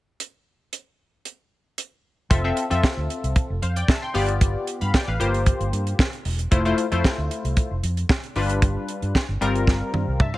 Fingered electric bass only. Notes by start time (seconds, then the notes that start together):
2.31 F1
2.71 F2
2.97 D2
3.24 C2
3.50 F1
3.62 F2
4.15 G1
4.82 G2
5.08 A1
5.20 G1
5.60 G1
5.73 G2
6.25 E1
6.52 F1
6.92 F2
7.18 D2
7.44 C2
7.71 F1
7.83 F2
8.36 G1
9.02 G2
9.29 G1
9.41 G1
9.94 G2
10.08 C2
10.20 G2